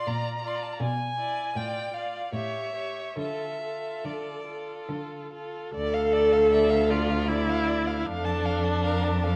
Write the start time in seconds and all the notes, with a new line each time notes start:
Already playing: F4 D5
0.07 A#2 A#5
0.43 F4 D5 C6
0.55 A#5
0.63 A5
0.73 A#5
0.81 B2 G#5
1.18 E4 D5
1.55 A2 F4 D5 G5
1.93 F4 D5 F5
2.33 A2 G4 C#5 E5
2.74 G4 C#5
3.17 D3 F4 A4 E5
3.62 F4 A4
4.05 D3 D5
4.47 F4 A4
4.89 D3
5.33 F4 A4
5.74 D2 A4 D5
5.94 F5
6.13 D5
6.33 F5
6.51 D5 E5
6.69 F5
6.90 F4 D5
7.10 F5
7.28 E4 D5
7.49 F5
7.67 D5
7.87 F5
7.99 E4
8.05 F2 D4 A4 F5
8.25 A5
8.45 F5
8.64 A5
8.84 A#4 F5
9.04 A5
9.24 A4 F5